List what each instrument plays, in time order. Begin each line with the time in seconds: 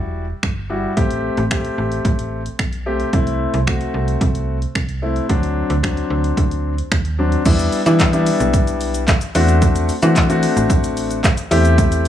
Already playing: fm bass E1, grand piano G3 E4 F#4
0.43 fm bass G1, finger snap, kick
0.70 grand piano G3 E4 F#4
0.96 fm bass A1, grand piano A3 C4 G4, kick, closed hi-hat
1.11 closed hi-hat
1.37 fm bass A1, closed hi-hat
1.51 grand piano A3 C4 G4, finger snap, kick, closed hi-hat
1.65 closed hi-hat
1.78 fm bass A1
1.92 closed hi-hat
2.05 fm bass A1, kick, closed hi-hat
2.19 closed hi-hat
2.46 closed hi-hat
2.59 fm bass B1, finger snap, kick, closed hi-hat
2.73 closed hi-hat
2.86 grand piano A3 C4 G4
3.00 closed hi-hat
3.13 fm bass C2, grand piano A3 C4 E4, kick, closed hi-hat
3.27 closed hi-hat
3.54 fm bass C2, closed hi-hat
3.67 grand piano A3 C4 F#4, finger snap, kick, closed hi-hat
3.81 closed hi-hat
3.94 fm bass C2
4.08 closed hi-hat
4.21 fm bass C2, kick, closed hi-hat
4.35 closed hi-hat
4.62 closed hi-hat
4.75 fm bass C2, finger snap, kick, closed hi-hat
4.89 closed hi-hat
5.02 grand piano A3 C4 E4
5.16 closed hi-hat
5.29 fm bass D2, grand piano F#3 C4 D4, kick, closed hi-hat
5.43 closed hi-hat
5.70 fm bass D2, closed hi-hat
5.83 grand piano F#3 C4 D4, finger snap, kick, closed hi-hat
5.97 closed hi-hat
6.10 fm bass D2
6.24 closed hi-hat
6.37 fm bass D2, kick, closed hi-hat
6.51 closed hi-hat
6.78 closed hi-hat
6.92 fm bass D#2, finger snap, kick, closed hi-hat
7.05 closed hi-hat
7.18 grand piano F#3 C4 D4
7.32 closed hi-hat
7.45 fm bass E2, grand piano G3 B3 D4 E4, kick, closed hi-hat, crash, shaker
7.59 closed hi-hat, shaker
7.72 open hi-hat, shaker
7.86 fm bass E3, grand piano G3 B3 D4 E4, closed hi-hat, shaker
8.00 kick, clap, closed hi-hat, shaker
8.13 grand piano G3 B3 D4 E4, closed hi-hat, shaker
8.26 open hi-hat, shaker
8.40 fm bass B1, closed hi-hat, shaker
8.53 kick, closed hi-hat, shaker
8.67 closed hi-hat, shaker
8.81 open hi-hat, shaker
8.94 closed hi-hat, shaker
9.08 kick, clap, closed hi-hat, shaker
9.21 closed hi-hat, shaker
9.35 fm bass E2, grand piano A3 C4 D4 F#4, open hi-hat, shaker
9.48 closed hi-hat, shaker
9.62 kick, closed hi-hat, shaker
9.76 closed hi-hat, shaker
9.89 open hi-hat, shaker
10.02 fm bass E3, grand piano A3 C4 D4 F#4, closed hi-hat, shaker
10.16 kick, clap, closed hi-hat, shaker
10.29 grand piano A3 C4 D4 F#4, closed hi-hat, shaker
10.43 open hi-hat, shaker
10.56 fm bass A1, closed hi-hat, shaker
10.70 kick, closed hi-hat, shaker
10.84 closed hi-hat, shaker
10.97 open hi-hat, shaker
11.11 closed hi-hat, shaker
11.24 kick, clap, closed hi-hat, shaker
11.37 closed hi-hat, shaker
11.51 fm bass E2, grand piano A3 C4 E4 G4, open hi-hat, shaker
11.65 closed hi-hat, shaker
11.78 kick, closed hi-hat, shaker
11.92 closed hi-hat, shaker